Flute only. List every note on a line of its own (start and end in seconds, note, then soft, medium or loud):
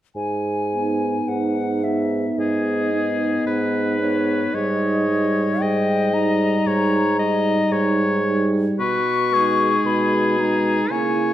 0.16 1.30 G#5 medium
1.28 1.85 F#5 soft
1.84 2.40 E5 soft
2.38 4.00 D#5 medium
4.00 4.55 C#5 soft
4.53 5.62 D#5 medium
5.60 6.15 G5 medium
6.14 8.24 A#5 medium
8.79 9.88 C#6 medium
9.86 10.41 B5 medium
10.40 10.90 A#5 medium
10.90 11.34 G#5 medium